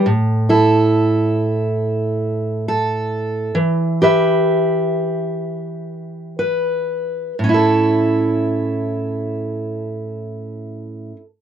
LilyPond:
\new Staff \with { instrumentName = "Steel-string acoustic guitar" } { \time 4/4 \key a \mixolydian \tempo 4 = 63 << { r8 <e' a'>2~ <e' a'>8 a'4 | r8 <g' b' e''>2~ <g' b' e''>8 b'4 | <cis' e' a'>1 | } \\ { a,1 | e1 | a,1 | } >> }